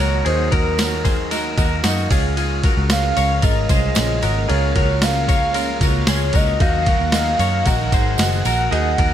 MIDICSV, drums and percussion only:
0, 0, Header, 1, 2, 480
1, 0, Start_track
1, 0, Key_signature, -5, "major"
1, 0, Tempo, 528634
1, 232, Time_signature, 4, 2, 24, 8
1, 8296, End_track
2, 0, Start_track
2, 0, Title_t, "Drums"
2, 234, Note_on_c, 9, 51, 68
2, 325, Note_off_c, 9, 51, 0
2, 474, Note_on_c, 9, 36, 90
2, 474, Note_on_c, 9, 51, 60
2, 564, Note_off_c, 9, 51, 0
2, 565, Note_off_c, 9, 36, 0
2, 713, Note_on_c, 9, 54, 78
2, 717, Note_on_c, 9, 38, 118
2, 718, Note_on_c, 9, 51, 81
2, 803, Note_off_c, 9, 54, 0
2, 808, Note_off_c, 9, 38, 0
2, 809, Note_off_c, 9, 51, 0
2, 950, Note_on_c, 9, 54, 50
2, 954, Note_on_c, 9, 36, 94
2, 955, Note_on_c, 9, 51, 68
2, 1041, Note_off_c, 9, 54, 0
2, 1044, Note_off_c, 9, 36, 0
2, 1046, Note_off_c, 9, 51, 0
2, 1192, Note_on_c, 9, 51, 69
2, 1194, Note_on_c, 9, 54, 55
2, 1199, Note_on_c, 9, 38, 38
2, 1283, Note_off_c, 9, 51, 0
2, 1285, Note_off_c, 9, 54, 0
2, 1290, Note_off_c, 9, 38, 0
2, 1430, Note_on_c, 9, 51, 67
2, 1431, Note_on_c, 9, 36, 89
2, 1435, Note_on_c, 9, 54, 58
2, 1521, Note_off_c, 9, 36, 0
2, 1521, Note_off_c, 9, 51, 0
2, 1525, Note_off_c, 9, 54, 0
2, 1668, Note_on_c, 9, 54, 98
2, 1669, Note_on_c, 9, 38, 109
2, 1671, Note_on_c, 9, 51, 76
2, 1759, Note_off_c, 9, 54, 0
2, 1760, Note_off_c, 9, 38, 0
2, 1761, Note_off_c, 9, 51, 0
2, 1912, Note_on_c, 9, 46, 73
2, 1912, Note_on_c, 9, 51, 67
2, 1914, Note_on_c, 9, 36, 109
2, 1922, Note_on_c, 9, 54, 58
2, 2002, Note_off_c, 9, 46, 0
2, 2002, Note_off_c, 9, 51, 0
2, 2004, Note_off_c, 9, 36, 0
2, 2013, Note_off_c, 9, 54, 0
2, 2153, Note_on_c, 9, 51, 66
2, 2162, Note_on_c, 9, 54, 32
2, 2244, Note_off_c, 9, 51, 0
2, 2253, Note_off_c, 9, 54, 0
2, 2392, Note_on_c, 9, 51, 63
2, 2395, Note_on_c, 9, 36, 93
2, 2406, Note_on_c, 9, 54, 32
2, 2483, Note_off_c, 9, 51, 0
2, 2486, Note_off_c, 9, 36, 0
2, 2497, Note_off_c, 9, 54, 0
2, 2631, Note_on_c, 9, 38, 124
2, 2632, Note_on_c, 9, 51, 82
2, 2635, Note_on_c, 9, 54, 88
2, 2722, Note_off_c, 9, 38, 0
2, 2723, Note_off_c, 9, 51, 0
2, 2726, Note_off_c, 9, 54, 0
2, 2875, Note_on_c, 9, 51, 68
2, 2879, Note_on_c, 9, 54, 52
2, 2966, Note_off_c, 9, 51, 0
2, 2970, Note_off_c, 9, 54, 0
2, 3109, Note_on_c, 9, 51, 64
2, 3115, Note_on_c, 9, 54, 60
2, 3117, Note_on_c, 9, 36, 100
2, 3199, Note_off_c, 9, 51, 0
2, 3206, Note_off_c, 9, 54, 0
2, 3207, Note_off_c, 9, 36, 0
2, 3354, Note_on_c, 9, 51, 63
2, 3354, Note_on_c, 9, 54, 55
2, 3355, Note_on_c, 9, 36, 97
2, 3445, Note_off_c, 9, 51, 0
2, 3445, Note_off_c, 9, 54, 0
2, 3446, Note_off_c, 9, 36, 0
2, 3587, Note_on_c, 9, 54, 98
2, 3597, Note_on_c, 9, 38, 111
2, 3598, Note_on_c, 9, 51, 82
2, 3678, Note_off_c, 9, 54, 0
2, 3688, Note_off_c, 9, 38, 0
2, 3689, Note_off_c, 9, 51, 0
2, 3835, Note_on_c, 9, 54, 57
2, 3838, Note_on_c, 9, 51, 64
2, 3925, Note_off_c, 9, 54, 0
2, 3929, Note_off_c, 9, 51, 0
2, 4081, Note_on_c, 9, 51, 66
2, 4172, Note_off_c, 9, 51, 0
2, 4318, Note_on_c, 9, 51, 59
2, 4320, Note_on_c, 9, 36, 90
2, 4409, Note_off_c, 9, 51, 0
2, 4410, Note_off_c, 9, 36, 0
2, 4556, Note_on_c, 9, 38, 119
2, 4558, Note_on_c, 9, 51, 87
2, 4564, Note_on_c, 9, 54, 81
2, 4647, Note_off_c, 9, 38, 0
2, 4648, Note_off_c, 9, 51, 0
2, 4655, Note_off_c, 9, 54, 0
2, 4800, Note_on_c, 9, 36, 93
2, 4801, Note_on_c, 9, 51, 63
2, 4801, Note_on_c, 9, 54, 49
2, 4891, Note_off_c, 9, 36, 0
2, 4892, Note_off_c, 9, 51, 0
2, 4892, Note_off_c, 9, 54, 0
2, 5034, Note_on_c, 9, 51, 70
2, 5047, Note_on_c, 9, 54, 54
2, 5124, Note_off_c, 9, 51, 0
2, 5138, Note_off_c, 9, 54, 0
2, 5275, Note_on_c, 9, 51, 62
2, 5277, Note_on_c, 9, 36, 91
2, 5289, Note_on_c, 9, 54, 59
2, 5366, Note_off_c, 9, 51, 0
2, 5367, Note_off_c, 9, 36, 0
2, 5380, Note_off_c, 9, 54, 0
2, 5512, Note_on_c, 9, 38, 116
2, 5513, Note_on_c, 9, 51, 82
2, 5520, Note_on_c, 9, 54, 91
2, 5603, Note_off_c, 9, 38, 0
2, 5604, Note_off_c, 9, 51, 0
2, 5611, Note_off_c, 9, 54, 0
2, 5746, Note_on_c, 9, 51, 63
2, 5756, Note_on_c, 9, 36, 104
2, 5764, Note_on_c, 9, 54, 55
2, 5837, Note_off_c, 9, 51, 0
2, 5847, Note_off_c, 9, 36, 0
2, 5855, Note_off_c, 9, 54, 0
2, 5995, Note_on_c, 9, 51, 66
2, 5997, Note_on_c, 9, 36, 115
2, 6016, Note_on_c, 9, 54, 33
2, 6086, Note_off_c, 9, 51, 0
2, 6088, Note_off_c, 9, 36, 0
2, 6107, Note_off_c, 9, 54, 0
2, 6233, Note_on_c, 9, 51, 59
2, 6237, Note_on_c, 9, 36, 95
2, 6323, Note_off_c, 9, 51, 0
2, 6328, Note_off_c, 9, 36, 0
2, 6468, Note_on_c, 9, 38, 119
2, 6470, Note_on_c, 9, 51, 87
2, 6481, Note_on_c, 9, 54, 87
2, 6559, Note_off_c, 9, 38, 0
2, 6560, Note_off_c, 9, 51, 0
2, 6572, Note_off_c, 9, 54, 0
2, 6714, Note_on_c, 9, 51, 64
2, 6722, Note_on_c, 9, 54, 52
2, 6805, Note_off_c, 9, 51, 0
2, 6813, Note_off_c, 9, 54, 0
2, 6951, Note_on_c, 9, 51, 68
2, 6957, Note_on_c, 9, 36, 106
2, 6960, Note_on_c, 9, 54, 55
2, 7042, Note_off_c, 9, 51, 0
2, 7048, Note_off_c, 9, 36, 0
2, 7051, Note_off_c, 9, 54, 0
2, 7195, Note_on_c, 9, 36, 94
2, 7195, Note_on_c, 9, 51, 60
2, 7196, Note_on_c, 9, 54, 57
2, 7286, Note_off_c, 9, 36, 0
2, 7286, Note_off_c, 9, 51, 0
2, 7287, Note_off_c, 9, 54, 0
2, 7426, Note_on_c, 9, 54, 92
2, 7440, Note_on_c, 9, 38, 112
2, 7441, Note_on_c, 9, 51, 81
2, 7517, Note_off_c, 9, 54, 0
2, 7530, Note_off_c, 9, 38, 0
2, 7532, Note_off_c, 9, 51, 0
2, 7672, Note_on_c, 9, 54, 57
2, 7677, Note_on_c, 9, 51, 66
2, 7763, Note_off_c, 9, 54, 0
2, 7768, Note_off_c, 9, 51, 0
2, 7922, Note_on_c, 9, 51, 62
2, 8013, Note_off_c, 9, 51, 0
2, 8157, Note_on_c, 9, 36, 91
2, 8157, Note_on_c, 9, 51, 62
2, 8248, Note_off_c, 9, 36, 0
2, 8248, Note_off_c, 9, 51, 0
2, 8296, End_track
0, 0, End_of_file